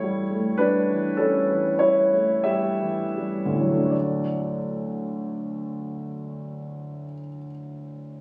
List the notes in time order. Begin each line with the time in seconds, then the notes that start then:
Already playing: A2 E3 G3 A3 E4 C#5
0.04 G3
0.31 A3
0.58 G3 D4 B4
0.90 E3
1.17 G3 C#4 A4
1.50 E3
1.79 G3 E4 C#5
2.13 A3
2.44 G3 G4 E5
2.81 E3
3.18 G3
3.45 D2
3.54 A2 E3
3.61 F#3
3.69 A3
3.77 D4
3.85 F#4
3.90 D5